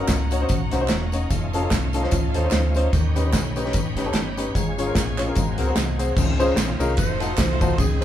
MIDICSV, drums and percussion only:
0, 0, Header, 1, 2, 480
1, 0, Start_track
1, 0, Key_signature, -5, "major"
1, 0, Tempo, 405132
1, 1545, Time_signature, 4, 2, 24, 8
1, 9533, End_track
2, 0, Start_track
2, 0, Title_t, "Drums"
2, 97, Note_on_c, 9, 38, 94
2, 99, Note_on_c, 9, 39, 92
2, 99, Note_on_c, 9, 54, 86
2, 102, Note_on_c, 9, 36, 75
2, 109, Note_on_c, 9, 42, 79
2, 215, Note_off_c, 9, 38, 0
2, 217, Note_off_c, 9, 39, 0
2, 217, Note_off_c, 9, 54, 0
2, 220, Note_off_c, 9, 36, 0
2, 228, Note_off_c, 9, 42, 0
2, 364, Note_on_c, 9, 54, 52
2, 378, Note_on_c, 9, 42, 68
2, 482, Note_off_c, 9, 54, 0
2, 497, Note_off_c, 9, 42, 0
2, 577, Note_on_c, 9, 54, 71
2, 580, Note_on_c, 9, 42, 88
2, 590, Note_on_c, 9, 36, 111
2, 695, Note_off_c, 9, 54, 0
2, 699, Note_off_c, 9, 42, 0
2, 708, Note_off_c, 9, 36, 0
2, 847, Note_on_c, 9, 38, 34
2, 847, Note_on_c, 9, 42, 69
2, 859, Note_on_c, 9, 54, 49
2, 965, Note_off_c, 9, 42, 0
2, 966, Note_off_c, 9, 38, 0
2, 977, Note_off_c, 9, 54, 0
2, 1046, Note_on_c, 9, 39, 73
2, 1046, Note_on_c, 9, 54, 66
2, 1057, Note_on_c, 9, 38, 114
2, 1059, Note_on_c, 9, 42, 84
2, 1164, Note_off_c, 9, 39, 0
2, 1164, Note_off_c, 9, 54, 0
2, 1176, Note_off_c, 9, 38, 0
2, 1177, Note_off_c, 9, 42, 0
2, 1329, Note_on_c, 9, 54, 51
2, 1345, Note_on_c, 9, 42, 71
2, 1447, Note_off_c, 9, 54, 0
2, 1463, Note_off_c, 9, 42, 0
2, 1545, Note_on_c, 9, 54, 86
2, 1547, Note_on_c, 9, 36, 94
2, 1551, Note_on_c, 9, 42, 70
2, 1663, Note_off_c, 9, 54, 0
2, 1666, Note_off_c, 9, 36, 0
2, 1670, Note_off_c, 9, 42, 0
2, 1817, Note_on_c, 9, 54, 54
2, 1828, Note_on_c, 9, 42, 59
2, 1936, Note_off_c, 9, 54, 0
2, 1947, Note_off_c, 9, 42, 0
2, 2022, Note_on_c, 9, 38, 89
2, 2027, Note_on_c, 9, 36, 80
2, 2030, Note_on_c, 9, 39, 90
2, 2030, Note_on_c, 9, 54, 89
2, 2035, Note_on_c, 9, 42, 75
2, 2141, Note_off_c, 9, 38, 0
2, 2145, Note_off_c, 9, 36, 0
2, 2149, Note_off_c, 9, 39, 0
2, 2149, Note_off_c, 9, 54, 0
2, 2154, Note_off_c, 9, 42, 0
2, 2287, Note_on_c, 9, 54, 52
2, 2302, Note_on_c, 9, 42, 61
2, 2405, Note_off_c, 9, 54, 0
2, 2412, Note_on_c, 9, 38, 31
2, 2421, Note_off_c, 9, 42, 0
2, 2503, Note_on_c, 9, 54, 85
2, 2509, Note_on_c, 9, 42, 85
2, 2516, Note_on_c, 9, 36, 100
2, 2530, Note_off_c, 9, 38, 0
2, 2621, Note_off_c, 9, 54, 0
2, 2627, Note_off_c, 9, 42, 0
2, 2635, Note_off_c, 9, 36, 0
2, 2777, Note_on_c, 9, 42, 72
2, 2783, Note_on_c, 9, 54, 52
2, 2896, Note_off_c, 9, 42, 0
2, 2902, Note_off_c, 9, 54, 0
2, 2973, Note_on_c, 9, 39, 73
2, 2973, Note_on_c, 9, 54, 76
2, 2985, Note_on_c, 9, 38, 105
2, 2986, Note_on_c, 9, 42, 92
2, 3092, Note_off_c, 9, 39, 0
2, 3092, Note_off_c, 9, 54, 0
2, 3103, Note_off_c, 9, 38, 0
2, 3105, Note_off_c, 9, 42, 0
2, 3252, Note_on_c, 9, 54, 52
2, 3277, Note_on_c, 9, 42, 73
2, 3370, Note_off_c, 9, 54, 0
2, 3395, Note_off_c, 9, 42, 0
2, 3472, Note_on_c, 9, 36, 102
2, 3472, Note_on_c, 9, 54, 78
2, 3475, Note_on_c, 9, 42, 69
2, 3591, Note_off_c, 9, 36, 0
2, 3591, Note_off_c, 9, 54, 0
2, 3594, Note_off_c, 9, 42, 0
2, 3742, Note_on_c, 9, 54, 54
2, 3750, Note_on_c, 9, 42, 63
2, 3860, Note_off_c, 9, 54, 0
2, 3868, Note_off_c, 9, 42, 0
2, 3944, Note_on_c, 9, 38, 96
2, 3948, Note_on_c, 9, 39, 90
2, 3948, Note_on_c, 9, 54, 91
2, 3949, Note_on_c, 9, 36, 76
2, 3957, Note_on_c, 9, 42, 83
2, 4062, Note_off_c, 9, 38, 0
2, 4066, Note_off_c, 9, 39, 0
2, 4066, Note_off_c, 9, 54, 0
2, 4067, Note_off_c, 9, 36, 0
2, 4075, Note_off_c, 9, 42, 0
2, 4216, Note_on_c, 9, 54, 50
2, 4230, Note_on_c, 9, 42, 56
2, 4329, Note_on_c, 9, 38, 31
2, 4335, Note_off_c, 9, 54, 0
2, 4348, Note_off_c, 9, 42, 0
2, 4420, Note_on_c, 9, 54, 88
2, 4423, Note_on_c, 9, 42, 84
2, 4434, Note_on_c, 9, 36, 105
2, 4447, Note_off_c, 9, 38, 0
2, 4539, Note_off_c, 9, 54, 0
2, 4542, Note_off_c, 9, 42, 0
2, 4553, Note_off_c, 9, 36, 0
2, 4699, Note_on_c, 9, 38, 33
2, 4699, Note_on_c, 9, 42, 65
2, 4711, Note_on_c, 9, 54, 46
2, 4817, Note_off_c, 9, 42, 0
2, 4818, Note_off_c, 9, 38, 0
2, 4829, Note_off_c, 9, 54, 0
2, 4902, Note_on_c, 9, 38, 95
2, 4903, Note_on_c, 9, 42, 80
2, 4905, Note_on_c, 9, 39, 65
2, 4905, Note_on_c, 9, 54, 67
2, 5020, Note_off_c, 9, 38, 0
2, 5022, Note_off_c, 9, 42, 0
2, 5024, Note_off_c, 9, 39, 0
2, 5024, Note_off_c, 9, 54, 0
2, 5183, Note_on_c, 9, 54, 56
2, 5196, Note_on_c, 9, 42, 70
2, 5302, Note_off_c, 9, 54, 0
2, 5314, Note_off_c, 9, 42, 0
2, 5393, Note_on_c, 9, 36, 90
2, 5395, Note_on_c, 9, 42, 72
2, 5401, Note_on_c, 9, 54, 72
2, 5511, Note_off_c, 9, 36, 0
2, 5514, Note_off_c, 9, 42, 0
2, 5520, Note_off_c, 9, 54, 0
2, 5668, Note_on_c, 9, 54, 52
2, 5674, Note_on_c, 9, 42, 62
2, 5786, Note_off_c, 9, 54, 0
2, 5793, Note_off_c, 9, 42, 0
2, 5865, Note_on_c, 9, 38, 86
2, 5870, Note_on_c, 9, 36, 84
2, 5878, Note_on_c, 9, 39, 93
2, 5878, Note_on_c, 9, 42, 79
2, 5878, Note_on_c, 9, 54, 89
2, 5983, Note_off_c, 9, 38, 0
2, 5989, Note_off_c, 9, 36, 0
2, 5996, Note_off_c, 9, 42, 0
2, 5997, Note_off_c, 9, 39, 0
2, 5997, Note_off_c, 9, 54, 0
2, 6140, Note_on_c, 9, 39, 70
2, 6140, Note_on_c, 9, 54, 50
2, 6152, Note_on_c, 9, 42, 65
2, 6259, Note_off_c, 9, 39, 0
2, 6259, Note_off_c, 9, 54, 0
2, 6270, Note_off_c, 9, 42, 0
2, 6344, Note_on_c, 9, 42, 83
2, 6357, Note_on_c, 9, 36, 102
2, 6358, Note_on_c, 9, 54, 88
2, 6463, Note_off_c, 9, 42, 0
2, 6475, Note_off_c, 9, 36, 0
2, 6477, Note_off_c, 9, 54, 0
2, 6609, Note_on_c, 9, 42, 65
2, 6639, Note_on_c, 9, 54, 48
2, 6727, Note_off_c, 9, 42, 0
2, 6757, Note_off_c, 9, 54, 0
2, 6820, Note_on_c, 9, 38, 112
2, 6822, Note_on_c, 9, 42, 87
2, 6833, Note_on_c, 9, 39, 72
2, 6833, Note_on_c, 9, 54, 80
2, 6939, Note_off_c, 9, 38, 0
2, 6940, Note_off_c, 9, 42, 0
2, 6951, Note_off_c, 9, 39, 0
2, 6951, Note_off_c, 9, 54, 0
2, 7102, Note_on_c, 9, 54, 55
2, 7103, Note_on_c, 9, 42, 65
2, 7221, Note_off_c, 9, 42, 0
2, 7221, Note_off_c, 9, 54, 0
2, 7304, Note_on_c, 9, 49, 102
2, 7306, Note_on_c, 9, 36, 118
2, 7318, Note_on_c, 9, 54, 87
2, 7423, Note_off_c, 9, 49, 0
2, 7424, Note_off_c, 9, 36, 0
2, 7436, Note_off_c, 9, 54, 0
2, 7585, Note_on_c, 9, 51, 52
2, 7586, Note_on_c, 9, 54, 57
2, 7703, Note_off_c, 9, 51, 0
2, 7704, Note_off_c, 9, 54, 0
2, 7777, Note_on_c, 9, 38, 110
2, 7790, Note_on_c, 9, 51, 69
2, 7795, Note_on_c, 9, 39, 105
2, 7795, Note_on_c, 9, 54, 100
2, 7896, Note_off_c, 9, 38, 0
2, 7909, Note_off_c, 9, 51, 0
2, 7913, Note_off_c, 9, 39, 0
2, 7913, Note_off_c, 9, 54, 0
2, 8058, Note_on_c, 9, 54, 58
2, 8064, Note_on_c, 9, 51, 53
2, 8177, Note_off_c, 9, 54, 0
2, 8183, Note_off_c, 9, 51, 0
2, 8257, Note_on_c, 9, 51, 71
2, 8269, Note_on_c, 9, 36, 113
2, 8274, Note_on_c, 9, 54, 87
2, 8375, Note_off_c, 9, 51, 0
2, 8388, Note_off_c, 9, 36, 0
2, 8392, Note_off_c, 9, 54, 0
2, 8533, Note_on_c, 9, 51, 61
2, 8534, Note_on_c, 9, 38, 31
2, 8558, Note_on_c, 9, 54, 60
2, 8652, Note_off_c, 9, 38, 0
2, 8652, Note_off_c, 9, 51, 0
2, 8677, Note_off_c, 9, 54, 0
2, 8741, Note_on_c, 9, 39, 87
2, 8741, Note_on_c, 9, 54, 78
2, 8745, Note_on_c, 9, 38, 116
2, 8747, Note_on_c, 9, 36, 91
2, 8747, Note_on_c, 9, 51, 82
2, 8859, Note_off_c, 9, 39, 0
2, 8859, Note_off_c, 9, 54, 0
2, 8864, Note_off_c, 9, 38, 0
2, 8865, Note_off_c, 9, 36, 0
2, 8865, Note_off_c, 9, 51, 0
2, 9016, Note_on_c, 9, 54, 57
2, 9018, Note_on_c, 9, 36, 109
2, 9019, Note_on_c, 9, 51, 60
2, 9134, Note_off_c, 9, 54, 0
2, 9136, Note_off_c, 9, 36, 0
2, 9138, Note_off_c, 9, 51, 0
2, 9221, Note_on_c, 9, 51, 62
2, 9223, Note_on_c, 9, 36, 99
2, 9234, Note_on_c, 9, 54, 82
2, 9339, Note_off_c, 9, 51, 0
2, 9341, Note_off_c, 9, 36, 0
2, 9353, Note_off_c, 9, 54, 0
2, 9533, End_track
0, 0, End_of_file